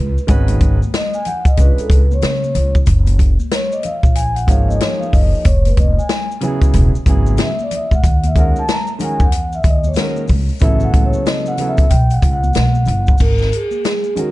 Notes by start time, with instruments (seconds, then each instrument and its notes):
Already playing: upright bass C#2, vibraphone B4
0.18 maracas
0.27 upright bass G#1, grand piano D#3 G#3 C#4 F#4 B4, kick, closed hi-hat, maracas
0.48 closed hi-hat, high conga, maracas
0.61 upright bass G#1, kick, closed hi-hat, maracas
0.82 high conga, maracas
0.94 vibraphone D#5, snare, closed hi-hat, maracas
1.14 vibraphone G#5, maracas
1.25 vibraphone F#5, closed hi-hat, low conga, maracas
1.45 vibraphone D#5, kick, closed hi-hat, maracas
1.57 upright bass C#2, grand piano G#3 C#4 D4 F4 B4, vibraphone B4, kick, closed hi-hat, maracas
1.77 vibraphone A4, muted upright bass stroke, closed hi-hat, maracas
1.90 upright bass C#2, vibraphone B4, kick, closed hi-hat, maracas
2.11 vibraphone C#5, high conga, maracas
2.22 upright bass C#3, snare, closed hi-hat, low conga, maracas
2.44 high conga, maracas
2.55 upright bass C#2, closed hi-hat, low conga, maracas
2.75 kick, maracas
2.86 upright bass F#1, kick, closed hi-hat, maracas
3.06 closed hi-hat, high conga, maracas
3.19 kick, closed hi-hat, maracas
3.39 high conga, maracas
3.51 vibraphone C#5, snare, closed hi-hat, maracas
3.72 vibraphone D#5, maracas
3.83 vibraphone F5, closed hi-hat, low conga, maracas
4.03 upright bass A#1, kick, maracas
4.15 vibraphone G#5, closed hi-hat, maracas
4.35 vibraphone F#5, closed hi-hat, maracas
4.47 upright bass G#1, grand piano F3 A#3 D#4 G#4 C#5, vibraphone F5, kick, closed hi-hat, maracas
4.68 vibraphone D#5, high conga, maracas
4.81 vibraphone C#5, snare, closed hi-hat, low conga, maracas
5.00 vibraphone F5, high conga, maracas
5.13 upright bass F#1, vibraphone D#5, kick, open hi-hat, low conga, maracas
5.35 maracas
5.45 upright bass F1, vibraphone C#5, kick, closed hi-hat, maracas
5.65 vibraphone B4, closed hi-hat, high conga, maracas
5.77 upright bass F1, vibraphone D#5, kick, closed hi-hat, maracas
5.99 vibraphone G#5, high conga, maracas
6.09 snare, closed hi-hat, maracas
6.31 maracas
6.41 grand piano C#3 F#3 B3 E4 G#4, closed hi-hat, low conga, maracas
6.61 kick, closed hi-hat, maracas
6.73 upright bass E1, kick, closed hi-hat, maracas
6.95 muted upright bass stroke, maracas
7.06 upright bass G#1, grand piano C#3 F#3 B3 E4 G#4, kick, closed hi-hat, maracas
7.26 high conga, maracas
7.37 snare, closed hi-hat, low conga, maracas
7.41 vibraphone E5
7.59 vibraphone D5, high conga, maracas
7.71 vibraphone E5, closed hi-hat, low conga, maracas
7.91 upright bass D2, vibraphone F#5, kick, maracas
8.04 upright bass D#2, kick, closed hi-hat, maracas
8.23 vibraphone E5, closed hi-hat, high conga, maracas
8.35 grand piano D#3 G#3 C#4 F#4 A#4, kick, closed hi-hat, maracas
8.39 vibraphone F#5
8.56 vibraphone A5, high conga, maracas
8.68 vibraphone A#5, snare, closed hi-hat, maracas
8.87 maracas
8.99 grand piano D#3 G#3 C#4 F#4 A#4, closed hi-hat, low conga, maracas
9.04 vibraphone G#5
9.20 upright bass E2, vibraphone F#5, kick, maracas
9.32 closed hi-hat, maracas
9.52 vibraphone E5, maracas
9.64 upright bass D#2, kick, closed hi-hat, maracas
9.68 vibraphone D#5
9.84 vibraphone C#5, high conga, maracas
9.94 grand piano D#3 G#3, snare, closed hi-hat, low conga, maracas
9.98 grand piano C#4 F#4 A#4
10.16 high conga, maracas
10.28 upright bass C#2, kick, open hi-hat, low conga, maracas
10.49 maracas
10.59 upright bass A1, grand piano C#3 F#3 B3 E4 A4, vibraphone E5, kick, closed hi-hat, maracas
10.80 vibraphone F#5, high conga, maracas
10.94 upright bass A1, kick, closed hi-hat, maracas
11.05 vibraphone C#5
11.13 high conga, maracas
11.26 vibraphone D#5, snare, closed hi-hat, maracas
11.46 vibraphone F#5, maracas
11.58 grand piano C#3 F#3 B3 E4 A4, closed hi-hat, low conga, maracas
11.68 vibraphone E5
11.77 kick, closed hi-hat, maracas
11.90 upright bass B1, vibraphone G5, kick, closed hi-hat, maracas
12.10 vibraphone F#5, closed hi-hat, maracas
12.22 upright bass C#2, kick, closed hi-hat, maracas
12.33 vibraphone F#5
12.43 high conga, maracas
12.54 upright bass B1, snare, closed hi-hat, low conga, maracas
12.75 high conga, maracas
12.86 upright bass G1, closed hi-hat, low conga, maracas
13.07 kick, maracas
13.18 upright bass G#1, vibraphone A#4, kick, crash, maracas
13.38 snare, maracas
13.52 vibraphone G#4, closed hi-hat, maracas
13.71 high conga, maracas
13.85 vibraphone G#4, snare, closed hi-hat, maracas
14.04 maracas
14.15 grand piano D#3 G#3 C#4 F#4 A#4, vibraphone F#4, closed hi-hat, low conga, maracas